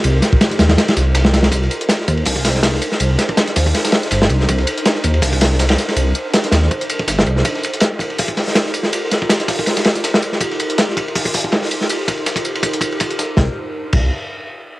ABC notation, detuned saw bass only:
X:1
M:4/4
L:1/8
Q:"Swing 16ths" 1/4=162
K:Cm
V:1 name="Detuned saw bass" clef=bass
C,, z2 E,, z C,,3 | C,, z2 E,, C,,3 z | C,, z2 E,, z2 G,,, C,, | C,, z2 E,, C,,3 z |
C,, z2 E,, z2 G,,, C,, | z8 | z8 | z8 |
z8 | C,, z2 C,, z4 |]